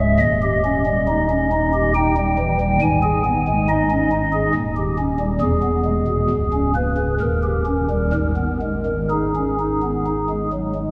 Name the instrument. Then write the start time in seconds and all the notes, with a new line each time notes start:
pipe organ
Already playing: C#1 C#2 E5
0.00 G#3
0.20 D#1 D#2 D#5
0.43 G4
0.65 C#4
0.86 G3
1.08 D#4
1.30 C#4
1.52 D#4
1.74 G4
1.95 D#4 G5
2.17 G3
2.39 E3
2.60 G3
2.82 G#1 G#2 G#5
3.03 G#4
3.25 B3
3.48 G#3
3.69 D#4 D#5
3.90 C#4
4.12 D#4
4.33 G#4
4.55 D#1 D#2
4.77 G4
4.98 C#4
5.20 G3
5.41 E1 E2 G#4
5.63 B3
5.85 G#3
6.07 B2
6.30 C#1 C#2
6.53 C#4
6.75 A#3 B4
6.98 C#3
7.21 D#1 D#2 A#4
7.43 G4
7.66 C#4
7.90 G3
8.13 G#1 G#2 A#4
8.37 B3
8.62 G#3
8.86 D#3
9.10 D#4 G#4
9.35 C#4
9.60 D#4
9.83 B3
10.06 D#4
10.29 G#3
10.53 F#3
10.75 G#3